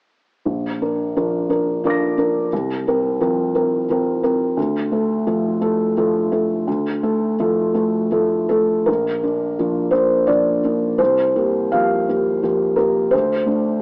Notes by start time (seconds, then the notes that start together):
0.45 A#1
0.81 D4 A#4
1.16 F3 D4 A#4
1.49 D4 A#4
1.84 F3 D4 A#4 F5 D6
1.90 A#6
2.18 D4 A#4
2.53 C2
2.87 C4 A#4
3.21 F3 C4 A#4
3.55 C4 A#4
3.89 F3 C4 A#4
4.23 C4 A#4
4.57 D2
4.92 A3 A4
5.27 F3 A3 A4
5.61 A3 A4
5.97 F3 A3 A4
6.32 A3 A4
6.67 D2
7.03 A3 A4
7.40 F3 A3 A4
7.74 A3 A4
8.11 F3 A3 A4
8.49 A3 A4
8.86 A#1 A#4
9.23 A#3 D4
9.59 F3 A#3 D4
9.91 A#3 D4 C5
10.27 F3 A#3 D4 D5
10.64 A#3 D4
10.98 C2 C5
11.36 A#3 G4
11.72 F3 A#3 G4 F5
12.09 A#3 G4
12.43 F3 A#3 G4
12.76 A#3 G4 A#4
13.11 D2 C5
13.46 A3 D4